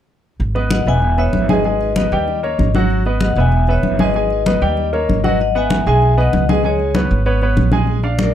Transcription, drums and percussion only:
0.40 high conga soft
0.56 high conga soft
0.71 high conga medium
0.86 high conga soft
1.02 high conga soft
1.18 high conga soft
1.33 high conga medium
1.49 high conga medium
1.64 high conga soft
1.81 high conga soft
1.96 high conga medium
2.12 high conga soft
2.28 high conga soft
2.44 high conga soft
2.59 high conga medium
2.75 high conga medium
2.90 high conga soft
3.05 high conga soft
3.21 high conga medium
3.36 high conga soft
3.52 high conga soft
3.67 high conga soft
3.83 high conga medium
3.99 high conga medium
4.14 high conga soft
4.30 high conga soft
4.46 high conga medium
4.62 high conga soft
4.77 high conga soft
4.93 high conga soft
5.09 high conga medium
5.24 high conga medium
5.40 high conga soft
5.56 high conga soft
5.70 high conga medium
5.87 high conga soft
6.02 high conga soft
6.18 high conga soft
6.33 high conga medium
6.49 high conga medium
6.64 high conga soft
6.79 high conga soft
6.95 high conga medium
7.12 high conga soft
7.26 high conga soft
7.42 high conga soft
7.57 high conga medium
7.72 high conga medium
7.87 high conga soft
8.03 high conga soft
8.19 high conga medium

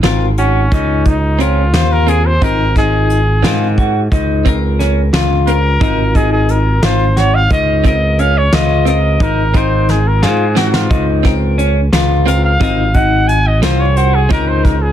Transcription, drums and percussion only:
0.03 snare medium
0.03 closed hi-hat medium
0.38 closed hi-hat medium
0.72 kick loud
0.72 closed hi-hat medium
1.06 kick medium
1.06 closed hi-hat medium
1.40 closed hi-hat medium
1.74 snare loud
1.74 closed hi-hat medium
2.08 closed hi-hat medium
2.42 kick loud
2.42 closed hi-hat medium
2.76 kick medium
2.76 snare soft
2.76 closed hi-hat medium
3.10 closed hi-hat medium
3.44 snare loud
3.44 closed hi-hat medium
3.78 kick medium
3.78 closed hi-hat medium
4.12 kick loud
4.12 closed hi-hat medium
4.46 kick medium
4.46 closed hi-hat medium
4.80 snare soft
4.80 closed hi-hat medium
5.14 snare loud
5.14 closed hi-hat medium
5.47 closed hi-hat medium
5.81 kick loud
5.81 closed hi-hat medium
6.15 kick medium
6.15 closed hi-hat medium
6.49 closed hi-hat medium
6.83 snare loud
6.83 closed hi-hat medium
7.17 snare soft
7.17 closed hi-hat medium
7.50 kick loud
7.50 closed hi-hat medium
7.85 kick medium
7.85 closed hi-hat medium
8.19 closed hi-hat medium
8.53 snare loud
8.53 closed hi-hat medium
8.86 closed hi-hat medium
9.20 kick loud
9.20 closed hi-hat medium
9.54 kick medium
9.54 closed hi-hat medium
9.89 snare soft
9.89 closed hi-hat medium
10.23 snare medium
10.56 snare medium
10.74 snare medium
10.91 kick loud
10.91 closed hi-hat medium
11.25 kick medium
11.25 snare soft
11.25 closed hi-hat medium
11.59 closed hi-hat medium
11.93 snare loud
11.93 closed hi-hat medium
12.28 closed hi-hat medium
12.61 kick loud
12.61 closed hi-hat medium
12.94 kick medium
12.94 closed hi-hat medium
13.29 closed hi-hat medium
13.63 snare loud
13.63 closed hi-hat medium
13.97 closed hi-hat medium
14.30 kick loud
14.30 closed hi-hat medium
14.65 kick medium
14.65 snare soft
14.65 closed hi-hat medium

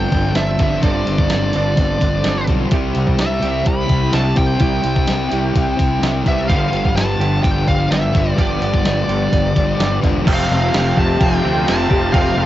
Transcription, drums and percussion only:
0.12 kick medium
0.12 open hi-hat soft
0.35 snare loud
0.35 open hi-hat medium
0.59 kick medium
0.59 open hi-hat medium
0.83 kick loud
0.83 open hi-hat medium
1.07 open hi-hat medium
1.19 kick medium
1.30 snare loud
1.30 open hi-hat medium
1.53 open hi-hat medium
1.77 kick medium
1.77 open hi-hat medium
2.01 kick medium
2.01 open hi-hat medium
2.24 snare loud
2.24 open hi-hat medium
2.47 kick medium
2.47 open hi-hat medium
2.71 kick loud
2.71 open hi-hat medium
2.95 open hi-hat medium
3.07 kick medium
3.19 snare loud
3.19 open hi-hat medium
3.42 open hi-hat medium
3.66 kick loud
3.66 open hi-hat medium
3.89 kick medium
3.89 open hi-hat soft
4.13 snare loud
4.13 open hi-hat medium
4.36 kick medium
4.36 open hi-hat medium
4.60 kick loud
4.60 open hi-hat medium
4.84 open hi-hat medium
4.96 kick medium
4.96 snare soft
5.07 snare loud
5.07 open hi-hat medium
5.32 open hi-hat medium
5.56 kick medium
5.56 open hi-hat medium
5.79 kick medium
5.79 open hi-hat medium
6.03 snare loud
6.03 open hi-hat medium
6.26 kick medium
6.26 open hi-hat medium
6.50 kick loud
6.50 open hi-hat medium
6.73 open hi-hat medium
6.85 kick medium
6.85 snare soft
6.97 snare loud
6.97 open hi-hat medium
7.21 open hi-hat medium
7.44 kick loud
7.44 open hi-hat medium
7.68 kick medium
7.68 open hi-hat soft
7.92 snare loud
7.92 open hi-hat medium
8.15 kick medium
8.15 open hi-hat medium
8.38 kick loud
8.38 open hi-hat medium
8.62 open hi-hat medium
8.74 kick medium
8.74 snare soft
8.85 snare loud
8.85 open hi-hat medium
9.09 open hi-hat medium
9.33 kick loud
9.33 open hi-hat medium
9.56 kick medium
9.56 open hi-hat medium
9.80 snare loud
9.80 open hi-hat medium
10.03 kick medium
10.03 open hi-hat medium
10.27 kick loud
10.27 crash loud
10.27 crash medium
10.39 snare soft
10.74 snare loud
10.74 crash medium
10.97 kick medium
11.21 kick loud
11.21 crash medium
11.68 snare loud
11.68 crash medium
11.91 kick medium
12.14 kick loud
12.14 crash medium
12.27 snare soft

